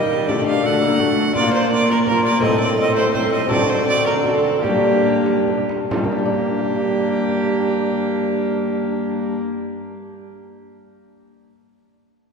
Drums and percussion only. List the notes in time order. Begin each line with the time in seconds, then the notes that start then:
0.11 frame drum
0.29 frame drum
0.82 frame drum
1.00 frame drum
1.17 frame drum
1.35 frame drum
1.89 frame drum
2.07 frame drum
2.25 frame drum
2.43 frame drum
2.97 frame drum
3.15 frame drum
3.33 frame drum
3.51 frame drum
4.05 frame drum
4.25 frame drum
4.45 frame drum
4.64 frame drum
5.26 frame drum
5.47 frame drum
5.69 frame drum
5.91 frame drum